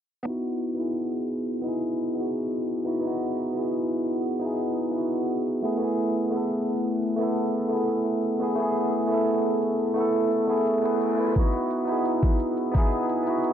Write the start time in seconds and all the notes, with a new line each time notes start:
0.23 B3 D#4, closed hi-hat
0.27 E4 F#4
0.44 closed hi-hat
0.61 closed hi-hat
0.74 B3 D#4, closed hi-hat
0.79 E4 G#4
0.96 closed hi-hat
1.13 closed hi-hat
1.30 closed hi-hat
1.48 closed hi-hat
1.61 B3 D#4, closed hi-hat
1.66 E4 G#4
1.82 closed hi-hat
2.00 closed hi-hat
2.14 B3 D#4, closed hi-hat
2.18 E4 F#4
2.34 closed hi-hat
2.52 closed hi-hat
2.69 closed hi-hat
2.85 B3 D#4 E4 F#4, closed hi-hat
3.00 B3 D#4, closed hi-hat
3.05 E4 F#4
3.21 closed hi-hat
3.38 closed hi-hat
3.53 B3 D#4, closed hi-hat
3.57 E4 G#4
3.73 closed hi-hat
3.90 closed hi-hat
4.08 closed hi-hat
4.25 closed hi-hat
4.39 B3 D#4, closed hi-hat
4.44 E4 G#4
4.60 closed hi-hat
4.77 closed hi-hat
4.91 B3 D#4, closed hi-hat
4.95 E4 F#4
5.12 closed hi-hat
5.29 closed hi-hat
5.46 closed hi-hat
5.62 A3 B3 E4 G#4, closed hi-hat
5.78 A3 B3, closed hi-hat
5.82 E4 G#4
5.98 closed hi-hat
6.16 closed hi-hat
6.30 A3 B3, closed hi-hat
6.34 E4 A4
6.51 closed hi-hat
6.68 closed hi-hat
6.85 closed hi-hat
7.03 closed hi-hat
7.17 A3 B3, closed hi-hat
7.21 E4 A4
7.37 closed hi-hat
7.55 closed hi-hat
7.68 A3 B3, closed hi-hat
7.73 E4 G#4
7.89 closed hi-hat
8.07 closed hi-hat
8.24 closed hi-hat
8.40 A3 B3 E4 G#4, closed hi-hat
8.56 A3 B3, closed hi-hat
8.60 E4 G#4
8.76 closed hi-hat
8.93 closed hi-hat
9.07 A3 B3, closed hi-hat
9.12 E4 A4
9.28 closed hi-hat
9.45 closed hi-hat
9.62 closed hi-hat
9.80 closed hi-hat
9.94 A3 B3, closed hi-hat
9.98 E4 A4
10.14 closed hi-hat
10.32 closed hi-hat
10.47 A3 B3 E4 G#4, closed hi-hat
10.67 closed hi-hat, reverse cymbal
10.82 A3 B3 E4 G#4, closed hi-hat
11.01 closed hi-hat
11.17 A3 B3 E4 B4, closed hi-hat
11.33 B3 D#4, kick, closed hi-hat
11.37 E4 F#4
11.53 closed hi-hat
11.71 closed hi-hat
11.85 B3 D#4, closed hi-hat
11.89 E4 G#4
12.05 closed hi-hat
12.23 kick, closed hi-hat
12.40 closed hi-hat
12.57 closed hi-hat
12.71 B3 D#4, kick, closed hi-hat
12.76 E4 G#4
12.92 closed hi-hat
13.09 closed hi-hat
13.23 B3 D#4, closed hi-hat
13.28 E4 F#4
13.44 closed hi-hat